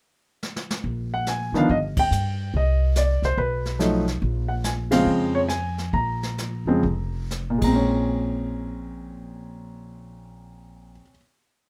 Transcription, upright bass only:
0.84 A#1
1.52 D2
1.70 G1
2.11 G2
2.54 C2
3.22 C2
3.37 B1
4.22 A#1
5.06 F2
5.93 A#1
6.66 F2
6.83 F1
7.61 A#1

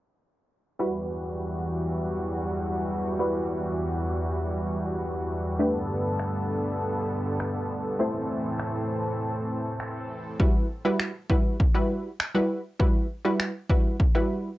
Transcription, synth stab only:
0.79 G3 E4 F#4 B4
3.19 G3 E4 F#4 B4
5.59 A3 D4 G4 B4
7.99 A3 C4 E4 C5
10.40 G3 E4 F#4 B4
10.85 G3 E4 F#4 B4
11.30 G3 E4 F#4 B4
11.74 G3 E4 F#4 B4
12.35 G3 E4 F#4 B4
12.79 G3 E4 F#4 B4
13.25 G3 E4 F#4 B4
13.70 G3 E4 F#4 B4
14.15 G3 E4 F#4 B4

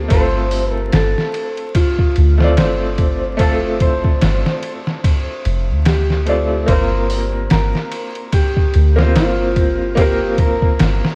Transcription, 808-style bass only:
0.12 G1
0.94 G1
2.18 D2
2.59 G1
4.23 G1
5.46 F1
5.70 D2
6.68 G1
7.53 G1
8.76 D2
9.16 G1
10.81 G1

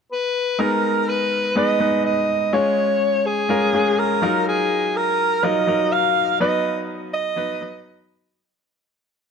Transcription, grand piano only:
0.59 G#3 B3 D#4 A#4
1.56 G#3 B3 D#4 B4
1.79 G#3 B3 D#4 B4
2.53 G#3 C#4 F4 C#5
3.49 G#3 C#4 F4 A#4
3.73 G#3 C#4 F4 G#4
4.22 F#3 D#4 F4 A#4
5.43 F#3 D#4 F4 A#4
5.67 F#3 D#4 F4 A#4
6.40 F#3 B3 D#4 B4
7.36 F#3 B3 D#4 B4
7.61 F#3 B3 D#4 B4

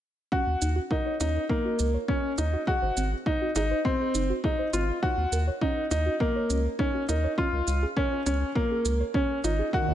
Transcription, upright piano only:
0.32 F#4
0.91 D#4
1.21 D#4
1.50 A#3
2.08 C#4
2.38 D#4
2.68 F#4
3.26 D#4
3.56 D#4
3.85 C4
4.44 D#4
4.73 F4
5.03 F#4
5.62 D#4
5.91 D#4
6.20 A#3
6.79 C#4
7.09 D#4
7.38 F4
7.97 C#4
8.26 C#4
8.56 A#3
9.15 C#4
9.44 D#4
9.74 F#4

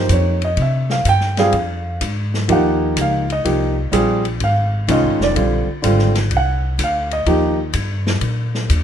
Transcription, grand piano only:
Already playing: F3 A#3 D#4 G4 C5
0.13 C#5
0.45 D#5
0.62 E5
0.91 F5
1.09 G5
1.38 G3 C4 F4 G#4 F5
2.48 F3 A#3 D#4 G4
2.52 F#5
3.01 F5
3.32 D#5
3.44 F3 A#3 D#4 G4
3.92 G3 C4 F4 G#4
4.44 F5
4.88 D#3 G#3 C#4 F4 D#5
5.23 D5
5.35 D3 G3 C4 F4
5.82 D3 G3 C4 F4
6.37 F#5
6.84 F5
7.13 D#5
7.26 F3 A#3 D#4 G4

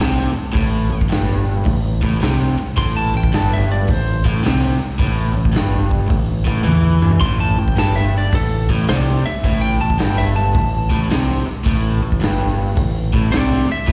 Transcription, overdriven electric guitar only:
Already playing: C3
0.34 muted overdriven electric guitar stroke
0.53 A2
0.90 A2
1.09 G2
1.65 A2
2.02 A2
2.20 C3
2.58 muted overdriven electric guitar stroke
2.77 A2
3.14 A2
3.33 G2
3.88 A2
4.25 A2
4.43 C3
4.79 muted overdriven electric guitar stroke
4.99 A2
5.34 A2
5.53 G2
6.08 A2
6.45 A2
6.64 E3
7.21 A2
7.58 A2
7.76 G2
8.33 A2
8.70 A2
8.89 C3
9.27 muted overdriven electric guitar stroke
9.45 A2
9.81 A2
9.99 G2
10.55 A2
10.90 A2
11.10 C3
11.47 muted overdriven electric guitar stroke
11.65 A2
12.03 A2
12.21 G2
12.77 A2
13.14 A2
13.32 C3
13.70 muted overdriven electric guitar stroke
13.88 A2

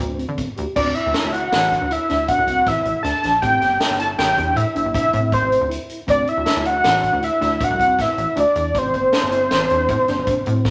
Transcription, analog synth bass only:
0.00 D2
0.29 D3
0.58 D2
0.77 D2
1.06 D2
1.24 D2
1.53 A1
1.82 D2
2.11 D2
2.39 C2
2.67 A1
2.85 A1
3.04 D2
3.25 A#1
3.43 A1
3.61 G1
3.90 G1
4.19 A1
4.38 E2
4.56 A2
4.76 G1
4.85 G1
5.14 A2
5.42 A1
5.61 D2
6.08 D2
6.37 D2
6.56 D2
6.85 A1
7.13 D2
7.41 D2
7.71 C2
7.99 A1
8.18 A1
8.37 D2
8.56 E2
8.75 A1
8.94 G1
9.23 G1
9.52 A1
9.71 E2
9.89 A2
10.09 G1
10.19 G1
10.47 A2

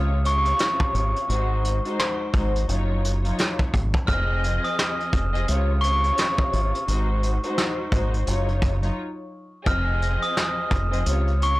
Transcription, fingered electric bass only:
Already playing: C#2
0.94 G#1
1.29 G#1
2.34 G#1
2.69 F#1
3.74 G#1
4.09 F1
5.13 F1
5.49 C#2
6.53 G#1
6.88 G#1
7.92 G#1
8.28 F#1
9.67 F1
10.71 F1
11.06 C#2

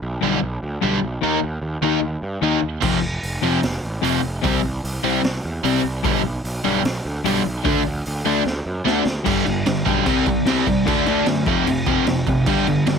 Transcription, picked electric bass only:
0.02 B1
0.23 B1
0.43 B1
0.63 D2
0.83 B1
1.03 B1
1.23 D#2
1.43 D#2
1.61 D#2
1.81 D#2
2.01 D#2
2.22 G2
2.42 D#2
2.62 D#2
2.82 F1
3.02 F1
3.23 F1
3.43 F1
3.63 F1
3.83 A1
4.03 F1
4.24 F1
4.44 C2
4.64 C2
4.84 C2
5.04 C2
5.23 C2
5.44 E2
5.63 C2
5.84 C2
6.04 B1
6.24 B1
6.44 B1
6.65 B1
6.84 B1
7.05 D2
7.25 B1
7.45 B1
7.65 D2
7.87 D2
8.07 D2
8.26 D2
8.45 D2
8.66 F#2
8.86 D2
9.05 D2
9.26 G1
9.47 G1
9.66 G1
9.86 B1
10.07 C2
10.46 C2
10.67 C2
10.87 D2
11.07 D2
11.26 F#2
11.46 F1
11.66 F1
12.07 F1
12.27 F1
12.47 G1
12.67 G1
12.86 G1

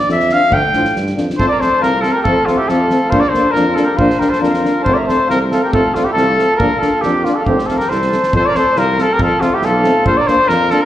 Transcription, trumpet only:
Already playing: D5
0.12 E5
0.33 F5
0.54 G5
1.38 C5
1.48 D5
1.60 C5
1.82 A#4
2.01 A4
2.12 A#4
2.23 A4
2.46 F4
2.58 G4
2.68 A4
3.10 C5
3.20 D5
3.29 C5
3.51 A#4
3.75 A4
3.85 A#4
3.97 C5
4.19 A#4
4.29 C5
4.41 A#4
4.84 C5
4.93 D5 E5
5.07 C5
5.30 A#4
5.52 A4
5.62 A#4
5.73 A4
5.95 F4
6.05 G4
6.12 A4
6.56 A#4
6.79 A4
7.01 G4
7.25 F4
7.35 A4
7.45 G4
7.66 A4
7.77 A#4
7.89 C5
8.35 C5
8.46 D5
8.56 C5
8.78 A#4
9.01 A4
9.13 A#4
9.23 A4
9.41 F4
9.54 G4
9.65 A4
10.06 C5
10.17 D5
10.27 C5
10.48 A#4
10.71 A4
10.81 A#4

